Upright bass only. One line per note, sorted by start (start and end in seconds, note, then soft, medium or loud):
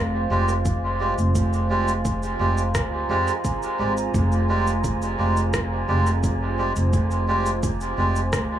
0.00 0.27 F1 medium
0.30 1.15 F1 medium
1.18 2.37 F1 medium
2.40 2.71 F1 medium
2.75 3.06 D2 medium
3.09 3.25 F2 medium
3.79 4.10 G#1 medium
4.14 5.16 F1 loud
5.19 5.85 F1 medium
5.89 6.73 F1 loud
6.77 7.95 F1 loud
7.98 8.29 F1 medium
8.33 8.59 D2 medium